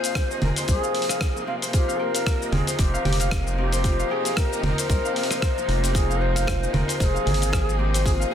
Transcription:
Already playing: C3 F3 A#3 C4 D#4 F4 G#4 C5
0.04 F5, open hi-hat, shaker
0.15 kick, cross-stick, open hi-hat, shaker
0.31 D#5, shaker
0.42 F1 C4 A#4, open hi-hat, low conga
0.56 C5, open hi-hat, shaker
0.68 C2 G#4, kick, open hi-hat, shaker
0.83 F5, shaker
0.95 G#4, open hi-hat
1.02 open hi-hat
1.09 F5, cross-stick, open hi-hat, shaker
1.21 G#4, kick, cross-stick, open hi-hat, shaker
1.35 C4, shaker
1.47 C4 F5
1.62 C5, open hi-hat, shaker
1.73 F4 G4 G#4, kick, open hi-hat, shaker
1.88 F5, shaker
1.99 G4 A#4
2.14 F5, open hi-hat, shaker
2.26 G4, kick, cross-stick, open hi-hat, shaker
2.40 D#5, shaker
2.52 F1 C4 G#4, open hi-hat, low conga
2.67 C5, open hi-hat, shaker
2.79 F1 G4, kick, open hi-hat, shaker
2.94 F5, shaker
3.05 F1 G4, open hi-hat, low conga
3.13 open hi-hat
3.20 F5, open hi-hat, shaker
3.31 kick, cross-stick, open hi-hat, shaker
3.47 C4, shaker
3.58 C4 G4
3.64 G4
3.72 C5, open hi-hat, shaker
3.84 F4, kick, open hi-hat, shaker
3.99 F5, shaker
4.11 G4 G#4
4.25 F5, open hi-hat, shaker
4.36 G4 A#4, kick, cross-stick, open hi-hat, shaker
4.52 D#5, shaker
4.63 F1 C4 A#4, open hi-hat, low conga
4.78 C5, open hi-hat, shaker
4.90 C2 G4, kick, open hi-hat, shaker
5.05 F5, shaker
5.16 F5, open hi-hat
5.23 open hi-hat
5.30 C5, cross-stick, open hi-hat, shaker
5.42 C5, kick, cross-stick, open hi-hat, shaker
5.57 D#4, shaker
5.68 F1 F4 G4, open hi-hat
5.83 C4, open hi-hat, shaker
5.94 F4 G#4, kick, open hi-hat, shaker
6.09 F5, shaker
6.20 G#4 C5
6.36 F5, open hi-hat, shaker
6.47 kick, cross-stick, open hi-hat, shaker
6.62 G#4 D#5, shaker
6.73 F1 C4 A#4, open hi-hat, low conga
6.88 C5, open hi-hat, shaker
7.00 F1 G#4 A#4, kick, open hi-hat, shaker
7.04 G#4
7.14 F5, shaker
7.26 G#1 G#4, open hi-hat, low conga
7.34 open hi-hat
7.40 F5, open hi-hat, shaker
7.52 G#4, kick, cross-stick, open hi-hat, shaker
7.67 C4, shaker
7.78 C4 G4
7.94 C5, open hi-hat, shaker
8.05 F4 G#4, kick, open hi-hat, shaker
8.20 F5, shaker
8.31 G#4 C5

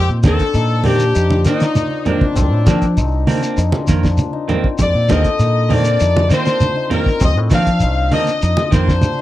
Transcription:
Already playing: C4 D#4 F4
0.09 A#2
0.23 D#2 D#3 A#3 C4 D4 A4, kick, snare, closed hi-hat, high conga, shekere
0.39 kick, snare, closed hi-hat, shekere
0.54 A#2 D#4, snare, closed hi-hat, shekere
0.84 D#3 A#3 C4 D4 G4, open hi-hat, high conga, low conga, shekere
0.99 closed hi-hat, shekere
1.15 F2 D#4, closed hi-hat, shekere
1.30 F4, high conga
1.44 D#3 A#3 C4 D#4, snare, closed hi-hat, shekere
1.60 D5, snare, closed hi-hat, shekere
1.75 closed hi-hat, high conga, shekere
1.90 D#4
2.05 D#3 A#3 C4 D4, closed hi-hat, low conga, shekere
2.21 C4, kick, high conga
2.35 C2 C4, kick, closed hi-hat, low conga, shekere
2.52 A2
2.66 D#3 F3 A#3 C4 D4, kick, snare, closed hi-hat, high conga, shekere
2.82 kick, closed hi-hat, shekere
2.97 C2 D#4, closed hi-hat, shekere
3.27 D#3 A#3 C4 D4, snare, open hi-hat, high conga, shekere
3.42 A#3 C4, closed hi-hat, shekere
3.57 F2 D#4, closed hi-hat, shekere
3.72 F4, high conga
3.87 F2 D#3 A#3, kick, snare, closed hi-hat, shekere
4.03 D4, kick, snare, shekere
4.18 closed hi-hat, high conga, shekere
4.33 D#4
4.48 D#3 A#3 C4, closed hi-hat, low conga, shekere
4.64 C4, kick
4.78 F2 C4 D5, kick, closed hi-hat, low conga, shekere
4.95 A#2
5.09 D#2 D3 D#3 A#3 C4 D#5, kick, snare, closed hi-hat, high conga, shekere
5.24 kick, snare, closed hi-hat, shekere
5.39 A#2 D#4, snare, closed hi-hat, shekere
5.69 D#3 A#3 C4 D4, open hi-hat, high conga, low conga, shekere
5.73 D5
5.84 A#3 C4, closed hi-hat, shekere
6.00 F2 D#4, snare, closed hi-hat, shekere
6.15 F4, high conga
6.29 D#3 A#3 C4, snare, closed hi-hat, shekere
6.33 C5
6.45 A#3 C4 D4, snare, closed hi-hat, shekere
6.60 closed hi-hat, high conga, shekere
6.76 D#4
6.90 D#3 A#3 C4 A#4, closed hi-hat, low conga, shekere
7.06 C4, kick, snare
7.20 C2 C4, kick, closed hi-hat, low conga, shekere
7.24 D#5
7.37 A2
7.50 D#3 F3 A#3 C4 D4 F5, kick, snare, closed hi-hat, high conga, shekere
7.66 kick, closed hi-hat, shekere
7.80 C2 D#4, closed hi-hat, shekere
8.11 D#3 A#3 C4 D4 D#5, open hi-hat, high conga, shekere
8.27 snare, closed hi-hat, shekere
8.42 F2 D#4, closed hi-hat, shekere
8.57 F4, high conga
8.71 F2 D#3 A#3 C4 C5, kick, snare, closed hi-hat, shekere
8.88 D4, kick, snare, shekere
9.01 closed hi-hat, high conga, shekere

